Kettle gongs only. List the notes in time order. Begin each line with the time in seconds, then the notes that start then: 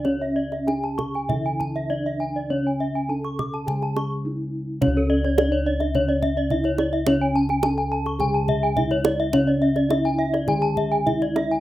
Already playing: C#3
0.05 C#4
0.68 D4
1.29 C#3
1.90 D4
2.50 C#4
3.09 D4
3.67 C#3
4.25 D4
4.82 C#4
4.87 C#2
5.39 D4
6.51 D4
7.08 C#4
7.64 D4
8.20 C#3
8.77 D4
9.33 C#4
9.90 D4
10.48 D3
11.06 D4